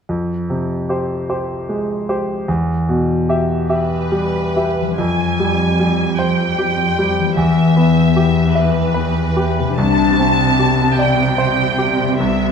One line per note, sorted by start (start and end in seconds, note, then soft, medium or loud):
0.09 2.44 F2 soft
0.50 1.14 C3 soft
0.89 1.26 G4 soft
0.89 1.26 C5 soft
1.29 1.65 G4 soft
1.29 1.65 C5 soft
1.69 2.32 G#3 soft
2.09 2.45 G4 soft
2.09 2.45 C5 soft
2.48 4.95 E2 soft
2.89 3.54 B2 soft
3.29 3.66 G4 soft
3.29 3.66 E5 soft
3.69 4.08 G4 soft
3.69 4.95 B4 medium
3.69 4.08 E5 soft
4.12 4.82 G3 soft
4.57 4.95 G4 soft
4.57 4.95 E5 soft
4.81 7.32 F3 soft
4.86 8.76 G3 soft
4.91 7.36 C4 soft
4.95 7.33 F2 soft
4.95 7.38 F4 soft
4.99 7.33 F2 soft
4.99 6.17 G#5 medium
5.40 5.78 G3 soft
5.80 6.43 G3 soft
6.19 6.82 C5 soft
6.19 7.37 G5 medium
6.59 7.22 G4 soft
6.99 7.38 G3 soft
7.19 9.71 E3 soft
7.24 9.73 B3 soft
7.28 9.76 E4 soft
7.33 9.72 G4 soft
7.37 9.73 E2 soft
7.37 8.53 E5 medium
7.77 8.39 B3 soft
8.16 8.79 G4 soft
8.55 9.77 B4 medium
8.55 9.20 E5 soft
8.94 9.60 B4 soft
9.37 9.77 G4 soft
9.59 12.01 C3 soft
9.64 12.52 C4 soft
9.69 12.19 D4 soft
9.73 12.21 G4 soft
9.73 10.95 A5 medium
9.78 12.16 C2 soft
9.78 12.52 C3 soft
10.19 10.82 C4 soft
10.59 11.22 G4 soft
10.97 11.63 D5 soft
10.97 12.19 G5 medium
11.38 12.03 C5 soft
11.78 12.19 G4 soft
12.02 12.52 C3 soft
12.07 12.52 B3 soft
12.11 12.52 E4 soft
12.16 12.52 A4 soft
12.16 12.52 E5 medium
12.20 12.52 C2 soft